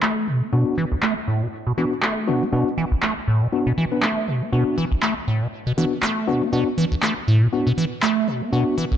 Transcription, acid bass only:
0.03 0.29 A3 loud
0.28 0.43 B2 medium
0.42 0.51 B3 medium
0.53 0.64 B2 medium
0.78 0.85 E3 medium
0.92 0.95 B1 medium
1.03 1.14 A3 loud
1.28 1.43 A2 medium
1.42 1.48 B2 medium
1.67 1.73 B2 medium
1.78 1.85 E3 loud
2.03 2.29 A3 loud
2.28 2.43 B2 medium
2.42 2.51 B3 medium
2.53 2.64 B2 medium
2.78 2.85 E3 loud
2.92 2.95 B1 medium
3.03 3.14 A3 loud
3.28 3.43 A2 medium
3.42 3.48 B2 medium
3.67 3.73 B2 medium
3.78 3.85 E3 loud
4.03 4.29 A3 loud
4.28 4.43 B2 medium
4.42 4.51 B3 medium
4.53 4.64 B2 medium
4.78 4.85 E3 loud
4.92 4.95 B1 medium
5.03 5.14 A3 loud
5.28 5.43 A2 medium
5.42 5.48 B2 medium
5.67 5.73 B2 medium
5.78 5.85 E3 loud
6.03 6.29 A3 loud
6.28 6.43 B2 medium
6.42 6.51 B3 medium
6.53 6.64 B2 medium
6.78 6.85 E3 medium
6.92 6.95 B1 medium
7.03 7.14 A3 loud
7.28 7.43 A2 medium
7.42 7.48 B2 medium
7.67 7.73 B2 medium
7.78 7.85 E3 loud
8.03 8.29 A3 loud
8.28 8.43 B2 medium
8.42 8.51 B3 medium
8.53 8.64 B2 medium
8.78 8.85 E3 loud
8.92 8.95 B1 medium

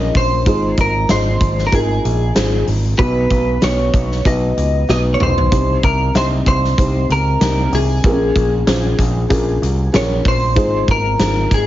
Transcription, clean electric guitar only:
0.00 0.16 D#5 medium
0.17 0.80 C5 medium
0.81 1.10 A#4 medium
1.11 1.66 C5 medium
1.67 1.73 A#4 medium
1.75 2.64 G#4 medium
2.99 3.64 B4 medium
3.64 4.26 C#5 medium
4.27 4.89 D#5 loud
4.90 4.97 D#5 medium
5.14 5.20 C#5 medium
5.23 5.84 C5 loud
5.84 6.16 A#4 medium
6.17 6.25 C5 loud
6.48 7.06 C5 medium
7.12 7.76 A#4 medium
7.75 10.01 G#4 loud
9.96 10.27 C#5 medium
10.28 10.91 C5 loud
10.91 11.54 A#4 medium
11.54 11.67 G#4 medium

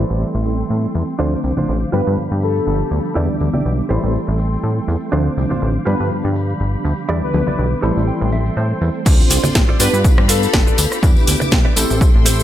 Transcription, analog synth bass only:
0.10 0.25 A1 medium
0.35 0.64 A1 medium
0.70 0.87 A2 medium
0.95 1.03 E2 medium
1.19 1.36 D2 loud
1.44 1.53 C2 medium
1.58 1.66 A1 soft
1.69 1.85 A1 medium
1.93 2.02 G2 loud
2.07 2.17 G2 medium
2.18 2.29 G2 soft
2.31 2.60 G2 medium
2.67 2.83 G1 medium
2.91 3.00 D2 medium
3.16 3.29 E2 loud
3.30 3.38 D2 soft
3.41 3.49 D2 medium
3.55 3.63 B1 soft
3.65 3.82 B1 medium
3.90 3.98 A1 loud
4.04 4.18 A1 medium
4.28 4.57 A1 medium
4.64 4.80 A2 medium
4.88 4.97 E2 loud
5.13 5.29 D2 loud
5.37 5.46 C2 medium
5.51 5.60 A1 soft
5.62 5.79 A1 medium
5.87 5.95 G2 loud
6.00 6.11 G2 medium
6.11 6.22 G2 soft
6.25 6.54 G2 loud
6.60 6.77 G1 medium
6.85 6.93 D2 loud
7.09 7.22 E2 loud
7.23 7.32 D2 soft
7.34 7.43 D2 medium
7.47 7.56 B1 soft
7.59 7.75 B1 medium
7.83 7.92 A1 loud
7.97 8.11 A1 medium
8.21 8.50 A1 medium
8.57 8.73 A2 medium
8.81 8.90 E2 medium
9.06 9.23 D2 loud
9.30 9.39 C2 loud
9.44 9.53 A1 soft
9.55 9.72 A1 medium
9.80 9.89 G2 loud
9.93 10.04 G2 medium
10.05 10.15 G2 soft
10.18 10.47 G2 loud
10.54 10.70 G1 medium
10.78 10.87 D2 medium
11.03 11.16 E2 loud
11.17 11.25 D2 soft
11.28 11.36 D2 medium
11.42 11.50 B1 soft
11.52 11.69 B1 medium
11.77 11.85 A1 loud
11.90 12.05 A1 medium
12.15 12.43 A1 loud

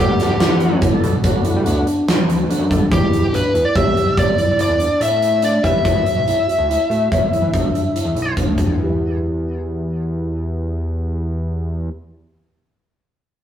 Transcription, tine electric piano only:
0.00 0.35 F#5 medium
0.40 0.58 E4 medium
0.60 0.79 F#4 medium
0.81 1.00 E4 medium
1.03 1.40 F#4 medium
1.45 1.63 E4 medium
1.65 1.84 D4 medium
1.86 2.05 D4 medium
2.08 2.45 F#4 medium
2.50 2.68 D4 medium
2.70 2.89 D4 medium
2.91 3.28 E4 medium
3.33 3.52 D4 medium
3.54 3.73 E4 medium
3.75 3.94 G4 medium
3.96 4.33 G4 medium
4.38 4.57 E4 medium
4.59 4.78 E4 medium
4.80 4.98 D4 medium
5.01 5.38 E4 medium
5.43 5.61 D4 medium
5.64 5.82 G4 medium
5.84 6.22 F#4 medium
6.27 6.45 E4 medium
6.47 6.66 F#4 medium
6.69 6.87 E4 medium
6.90 7.27 F#4 medium
7.32 7.51 E4 medium
7.53 7.71 D4 medium
7.74 7.93 D4 medium
7.95 8.32 E4 medium
8.37 8.55 D4 medium
8.57 8.76 D4 medium
8.78 11.89 E4 medium
8.78 11.93 G4 soft
8.86 11.97 B4 soft
8.90 12.01 E5 soft

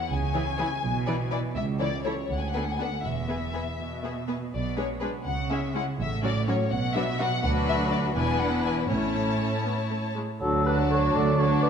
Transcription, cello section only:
0.10 0.71 C#3 soft
0.83 1.44 B2 medium
1.56 2.18 C#2 medium
2.30 2.92 D2 soft
3.03 3.66 E2 soft
3.78 4.41 B2 soft
4.53 5.14 B2 soft
5.26 5.87 C#3 soft
6.00 6.60 A2 medium
6.72 7.32 B2 medium
7.43 8.12 D2 medium
8.16 8.91 E2 medium
8.91 10.21 A2 soft
10.40 11.06 D2 medium
11.14 11.70 D2 medium

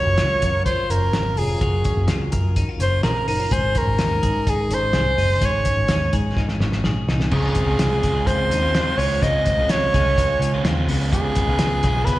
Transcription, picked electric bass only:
0.05 0.19 F#1 medium
0.17 0.44 C#2 medium
0.42 0.73 F#2 medium
0.90 1.10 F#1 medium
1.13 1.34 G#1 medium
1.36 1.57 F1 medium
1.61 1.81 F#1 loud
1.96 2.06 F#1 medium
2.07 2.28 C#2 medium
2.33 2.63 F#2 medium
2.79 3.00 F#1 medium
3.04 3.27 A#1 medium
3.27 3.48 F#1 medium
3.51 3.72 G#1 loud
3.87 4.01 G#1 medium
4.00 4.20 D#2 medium
4.23 4.53 G#2 medium
4.70 4.90 G#1 medium
4.94 5.14 C2 medium
5.17 5.38 F#1 medium
5.41 5.62 G#1 loud
5.77 5.91 G#1 medium
5.89 6.10 D#2 medium
6.13 6.43 G#2 medium
6.60 6.81 G#1 medium
6.84 7.04 A#1 medium
7.08 7.28 C2 medium
7.31 7.52 C#2 medium
7.66 7.77 C#2 medium
7.78 7.99 C2 medium
8.03 8.24 C#2 medium
8.27 8.47 C#2 medium
8.50 8.81 D#2 medium
8.98 9.18 C#2 medium
9.22 9.42 C#2 loud
9.58 9.88 C#2 medium
9.94 10.14 C2 medium
10.18 10.38 C#2 medium
10.40 10.60 C#2 medium
10.64 10.84 D#2 medium
10.87 11.28 C#2 medium
11.48 11.58 C#2 medium
11.59 11.79 C#2 medium
11.84 12.03 B1 medium
12.07 12.19 C#2 medium

